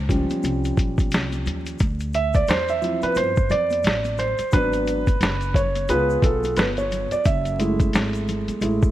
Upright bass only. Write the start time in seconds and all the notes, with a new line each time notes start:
Already playing: C#2
0.30 muted upright bass stroke
0.44 C2
0.77 A#1
1.12 C2
1.46 D#2
1.80 D2
2.48 E2
3.03 muted upright bass stroke
3.16 G2
3.50 F2
3.84 A1
4.39 muted upright bass stroke
4.53 G#1
5.21 F#1
5.89 C#2
6.22 B1
6.57 G1
7.12 muted upright bass stroke
7.26 F#1
7.94 G#1
8.48 muted upright bass stroke
8.61 A1